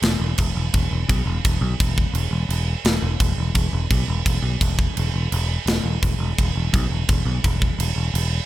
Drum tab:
CC |x-x-x-x-|x-x-x-x-|x-x-x-x-|x-x-x-x-|
SD |o-------|--------|o-------|--------|
BD |--o-o-o-|o-oo----|--o-o-o-|o-oo----|

CC |x-x-x-x-|x-x-x-x-|
SD |o-------|--------|
BD |--o-o-o-|o-oo----|